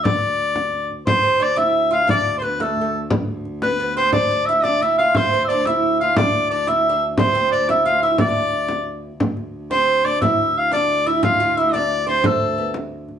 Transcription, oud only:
X:1
M:6/8
L:1/16
Q:3/8=118
K:Ddor
V:1 name="Oud"
z12 | C2 C2 D2 E4 F2 | D4 B,2 A,2- A,/2 A,2 z3/2 | z6 B,2 B,2 C2 |
D2 D2 E2 D2 E2 F2 | C2 C2 D2 E4 F2 | D4 D2 E2- E/2 D2 z3/2 | C2 C2 D2 E2 F2 E2 |
D8- D2 z2 | z6 C4 D2 | E6 D4 E2 | F2 F2 E2 D4 C2 |
A,4 B,2 z6 |]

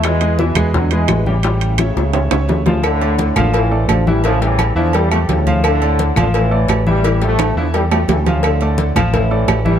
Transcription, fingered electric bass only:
X:1
M:4/4
L:1/8
Q:1/4=172
K:Aphr
V:1 name="Fingered electric bass" clef=bass
E,,3 E,,3 A,,,2- | A,,,3 ^C,,2 C,, D,,2- | [K:Dm] D,,3 A,,,3 A,,,2- | A,,,3 E,,3 D,,2- |
D,,3 A,,,3 A,,,2- | A,,,3 E,,3 D,,2- | D,,3 A,,,3 A,,,2 |]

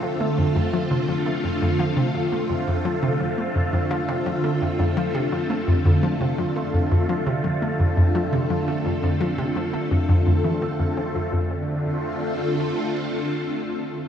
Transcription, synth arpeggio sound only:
X:1
M:4/4
L:1/16
Q:1/4=85
K:F
V:1 name="Synth arpeggio sound" clef=bass
F, A, F,, F,, F, C, F, A, F,, F,, F, C, F, A, F,, F,, | F, C, F, A, F,, F,, F, C, F, A, F,, F,, F, C, F, A, | F,, F,, F, C, F, A, F,, F,, F, C, F, A, F,, F,, F, C, | F, A, F,, F,, F, C, F, A, F,, F,, F,, E, A, F,, C F,, |
F,,2 z12 z2 |]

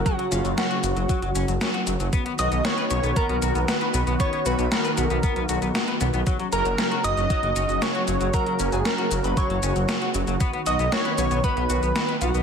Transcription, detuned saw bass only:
X:1
M:4/4
L:1/16
Q:1/4=116
K:F#
V:1 name="Detuned saw bass" clef=bass
z2 F,,, F,,, z2 F,,, F,,, z F,,, F,,, F,,, z2 F,,, F,,, | z2 B,,, B,,, z2 B,,, B,,, z B,,, B,,, B,,, z2 B,,, B,,, | z2 B,,, B,,, z2 B,,, B,,, z B,,, B,,, B,,, z2 B,,, B,,, | z2 F,,, F,,, z2 F,,, F,,, z F,,, F,,, F,,, z2 F,,, F,,, |
z2 F,,, F,,, z2 F,,, F,,, z F,,, F,,, F,,, z2 F,,, F,,, | z2 B,,, B,,, z2 B,,, B,,, z B,,, B,,, B,,, z2 B,,, B,,, |]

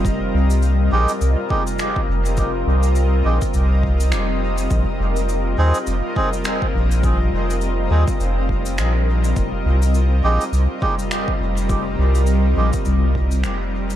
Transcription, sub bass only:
X:1
M:4/4
L:1/8
Q:"Swing 16ths" 1/4=103
K:Cm
V:1 name="Sub bass" clef=bass
F,,, C,,2 B,,, C,, z2 F,,,- | F,,, C,,2 B,,, C,,2 F,,,2 | B,,, F,,,2 E,, F,,, z2 B,,,- | B,,, F,,,2 E,, F,,,2 B,,,2 |
F,,, C,,2 B,,, C,, z2 F,,,- | F,,, C,,2 B,,, C,,2 F,,,2 |]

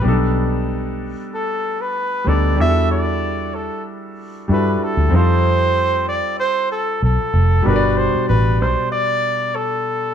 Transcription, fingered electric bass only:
X:1
M:4/4
L:1/16
Q:"Swing 16ths" 1/4=95
K:G
V:1 name="Fingered electric bass" clef=bass
B,,,6- B,,, z6 z D,,2 | E,,6- E,, z4 z G,,2 z D,, | =F,,6- F,, z4 z B,,, z =F,,,2 | G,,,3 z A,,,2 B,,, z8 z |]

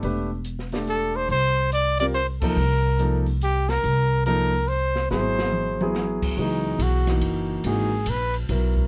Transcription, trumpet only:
X:1
M:3/4
L:1/8
Q:"Swing" 1/4=142
K:Clyd
V:1 name="Trumpet"
z4 A c | c2 d d c _B- | _B3 z G B- | _B2 B2 c2 |
^B4 z2 | [K:C#dor] D2 F z3 | G2 B z3 |]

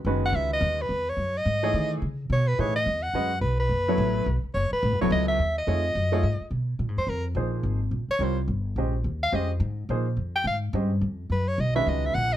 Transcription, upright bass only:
X:1
M:4/4
L:1/8
Q:"Swing" 1/4=214
K:C#m
V:1 name="Upright bass" clef=bass
F,,,2 C,,2 D,,2 E,,2 | F,,2 G,,2 D,2 C,2 | B,,2 A,,2 E,,2 F,,2 | B,,,2 F,,,2 A,,,2 B,,, z |
F,,, z (3A,,, F,,, E,,, C,,2 D,,2 | =F,,2 ^F,,2 G,, z B,,2 | [K:Bbdor] (3B,, A,, F,, F,,2 B,,,2 A,,,2 | B,,, z C,,2 G,,,2 B,,,2 |
E,,2 F,,2 A,,2 B,,2 | F,,2 A,,2 G,,2 F,,2 | _G,,2 _C,,2 D,,2 B,,,2 |]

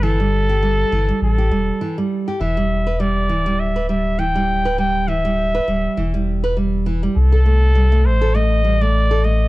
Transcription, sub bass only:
X:1
M:4/4
L:1/8
Q:"Swing 16ths" 1/4=101
K:Em
V:1 name="Sub bass" clef=bass
G,,,3 G,,, A,,, E,,, z2 | E,,,3 D,,,4- D,,,- | D,,,3 D,,, E,,,4 | C,,3 A,,,4- A,,, |]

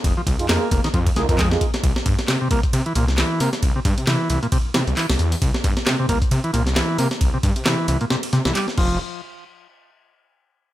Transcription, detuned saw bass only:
X:1
M:4/4
L:1/16
Q:"Swing 16ths" 1/4=134
K:Cphr
V:1 name="Detuned saw bass" clef=bass
F,,, z C,, F,, F,, z F,,, z F,, z C,, F,,2 z3 | C,, z G,, z C, z C,, z C, z C,,2 z2 C, z | C,, z G,, C, C, z C,, z3 C, C,, z C,, =E,, z | C,, z G,, z C, z C,, z C, z C,,2 z2 C, z |
C,, z G,, C, C, z C,, z3 C, C,, z2 F,,,2 | z16 |]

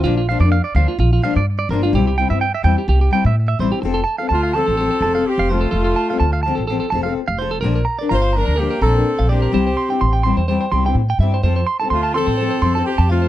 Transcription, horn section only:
X:1
M:4/4
L:1/8
Q:"Swing 16ths" 1/4=126
K:F
V:1 name="Horn section"
z8 | z8 | z2 [A,F] [CA]3 [CG] [A,F]- | [A,F]3 z4 z |
z2 [Fc] [DB] [B,G] [CA]2 [CG]- | [CG]3 z4 z | z2 [A,F] [CA]3 [CG] [A,F] |]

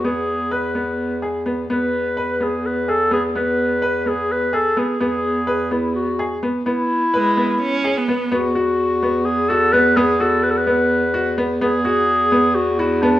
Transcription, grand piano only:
X:1
M:7/8
L:1/8
Q:1/4=127
K:E
V:1 name="Grand piano"
B,2 B B,2 G B, | B,2 B B,2 G B, | B,2 B B,2 G B, | B,2 B B,2 G B, |
B,2 B B,2 G B, | B, F2 B,2 F B, | B, F2 B,2 F B, | B, F2 B,2 F B, |]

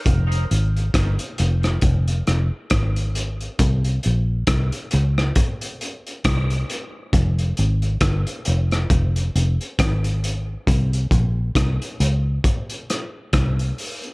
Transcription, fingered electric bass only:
X:1
M:4/4
L:1/16
Q:"Swing 16ths" 1/4=68
K:Fm
V:1 name="Fingered electric bass" clef=bass
F,,,2 A,,,2 G,,, z F,,,2 F,,,2 F,,, z A,,,4 | C,,2 B,,,2 C,, z D,,2 z4 C,,2 z2 | F,,,2 A,,,2 G,,, z F,,,2 F,,,2 F,,, z A,,,4 | C,,2 B,,,2 C,, z D,,2 z4 C,,2 z2 |]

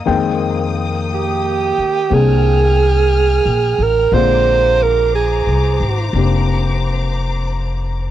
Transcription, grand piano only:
X:1
M:4/4
L:1/8
Q:"Swing" 1/4=59
K:Fdor
V:1 name="Grand piano"
[E,A,B,Cg]4 [B,CDA]4 | [D,A,B,CF]4 [B,CDG]4 |]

